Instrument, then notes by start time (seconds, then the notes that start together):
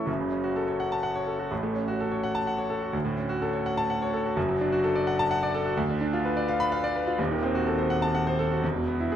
grand piano
Already playing: A2 E3 C#4 A4 E5 A5 C#6
0.06 F#1 F#2
0.20 C#3
0.32 C#4
0.44 F#4
0.56 A4
0.68 C#5
0.80 F#5
0.92 A5
1.03 F#5
1.15 C#5
1.27 A4
1.39 F#4
1.51 A1 A2
1.63 A3
1.76 C#4
1.88 F#4
2.00 A4
2.12 C#5
2.24 F#5
2.35 A5
2.47 F#5
2.58 C#5
2.70 A4
2.82 F#4
2.93 D2
3.05 A2
3.17 C#4
3.29 F#4
3.42 A4
3.53 C#5
3.66 F#5
3.77 A5
3.90 F#5
4.02 C#5
4.14 A4
4.25 F#4
4.36 F#1 F#2
4.49 F#3
4.61 D4
4.72 F#4
4.84 A4
4.95 D5
5.07 F#5
5.19 A5
5.31 F#5
5.43 D5
5.55 A4
5.66 F#4
5.77 D2
5.89 D3
6.01 D4
6.13 F4
6.25 B4
6.37 D5
6.48 F5
6.60 B5
6.72 F5
6.84 D5
6.96 B4
7.07 F4
7.18 D#1 D#2
7.31 D#3
7.43 C4
7.55 F#4
7.67 A4
7.78 C5
7.90 F#5
8.02 A5
8.15 F#5
8.27 C5
8.39 A4
8.52 F#4
8.63 E1 E2
8.76 B2
8.88 B3
9.00 E4
9.12 G#4